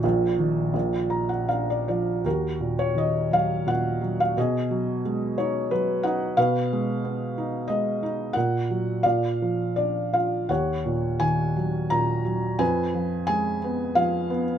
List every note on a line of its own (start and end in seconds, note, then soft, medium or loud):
0.00 0.71 A#1 medium
0.00 0.72 A#2 medium
0.00 1.47 D#4 medium
0.00 1.47 F#4 medium
0.00 1.46 A#4 medium
0.39 0.73 D#3 soft
0.73 2.21 A#1 medium
0.73 2.21 A#2 medium
1.10 1.29 A#5 medium
1.29 1.48 F#5 medium
1.48 2.22 D4 soft
1.48 1.68 F5 medium
1.70 1.87 D5 medium
1.88 2.24 F3 medium
1.88 2.22 D5 medium
2.24 4.32 D#2 medium
2.24 3.28 F#4 soft
2.24 2.75 A#4 medium
2.61 3.65 A#2 soft
2.79 2.95 C#5 medium
2.95 4.32 D#3 soft
2.95 3.33 D#5 medium
3.31 4.00 F#3 soft
3.31 3.69 F5 medium
3.67 4.35 A#2 soft
3.67 4.21 F#5 medium
4.01 4.35 F#3 soft
4.20 4.36 F5 medium
4.37 6.34 B2 medium
4.37 5.36 G#4 medium
4.37 5.02 D#5 medium
4.71 5.70 F#3 soft
5.05 6.33 G#3 medium
5.38 6.03 D#4 soft
5.38 5.72 C#5 medium
5.71 6.35 F#3 soft
5.71 6.05 B4 medium
6.03 6.37 D#4 medium
6.03 6.38 F#5 medium
6.37 8.32 B2 medium
6.37 7.66 B4 medium
6.37 7.65 F5 medium
6.73 7.68 G#3 medium
7.04 8.32 B3 soft
7.38 8.01 D#4 medium
7.68 8.34 G#3 soft
7.68 8.37 D#5 medium
8.03 8.35 D#4 soft
8.33 9.03 A#2 medium
8.33 9.01 A#4 medium
8.33 8.99 F#5 medium
8.70 9.04 F#3 soft
9.03 10.46 A#2 medium
9.03 9.75 D5 medium
9.03 9.72 F5 medium
9.42 10.47 F3 soft
9.76 10.48 D4 soft
9.76 10.14 D5 medium
10.13 10.48 F4 soft
10.13 10.50 F5 medium
10.49 12.56 D#2 medium
10.49 11.53 C#5 medium
10.49 11.23 F#5 medium
10.86 11.90 A#2 soft
11.20 12.56 D#3 soft
11.20 11.93 G#5 medium
11.56 12.23 F#3 soft
11.90 12.58 A#2 soft
11.90 12.62 A#5 medium
12.25 12.59 F#3 medium
12.59 14.58 F2 medium
12.59 13.59 B4 medium
12.59 13.25 G#5 medium
12.95 13.95 F3 soft
13.27 14.58 G#3 soft
13.27 13.98 G#5 loud
13.64 14.29 B3 medium
13.95 14.58 F3 medium
13.95 14.43 F5 medium
14.30 14.58 B3 medium